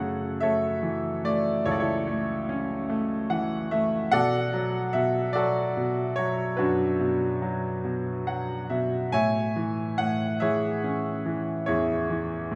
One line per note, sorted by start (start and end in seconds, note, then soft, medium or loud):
0.00 1.62 F#2 soft
0.00 1.62 C#3 soft
0.00 0.40 A3 soft
0.00 0.37 A4 medium
0.00 0.37 C#5 medium
0.00 0.44 F#5 medium
0.40 1.23 A3 soft
0.40 1.63 A4 soft
0.40 1.63 C#5 soft
0.40 1.20 E5 medium
0.83 2.45 E3 soft
1.24 2.06 A3 soft
1.24 1.64 D5 medium
1.66 4.08 C#2 soft
1.66 1.80 E4 soft
1.66 1.80 A4 soft
1.66 1.72 C#5 medium
1.71 1.79 D5 medium
1.80 3.27 E4 soft
1.80 3.27 A4 soft
1.80 3.26 C#5 medium
2.07 2.88 A3 soft
2.49 4.08 C#4 medium
2.89 3.70 A3 soft
3.30 4.09 E3 soft
3.30 3.68 F#5 medium
3.71 4.11 A3 soft
3.71 4.09 E5 medium
4.12 4.93 B2 medium
4.12 5.32 A4 medium
4.12 5.31 D5 medium
4.12 4.96 F#5 medium
4.53 5.35 F#3 medium
4.93 5.75 B2 medium
4.93 5.36 E5 medium
5.33 6.17 F#3 soft
5.33 6.55 F#4 medium
5.33 6.55 A4 medium
5.33 6.19 D5 medium
5.77 6.99 B2 soft
6.16 7.41 F#3 soft
6.16 6.59 C#5 medium
6.57 9.08 F#2 medium
6.57 7.79 D4 soft
6.57 7.79 F#4 soft
6.57 7.47 B4 medium
7.00 7.83 B2 soft
7.42 8.25 F#3 soft
7.84 8.68 B2 soft
8.27 9.10 F#3 soft
8.27 8.66 F#5 soft
8.70 9.11 B2 soft
8.70 9.09 E5 medium
9.12 9.97 A2 soft
9.12 10.37 C#5 medium
9.12 10.37 E5 medium
9.12 10.00 G#5 medium
9.56 10.40 E3 soft
9.98 11.63 A2 soft
9.98 10.41 F#5 medium
10.40 11.24 E3 soft
10.40 11.63 G#4 medium
10.40 11.64 C#5 medium
10.40 11.71 E5 medium
10.84 12.47 C#4 soft
11.26 12.09 E3 soft
11.66 12.55 E2 soft
11.66 12.55 E4 soft
11.66 12.55 G#4 soft
11.66 12.55 C#5 medium
12.10 12.55 E3 soft
12.51 12.55 A2 medium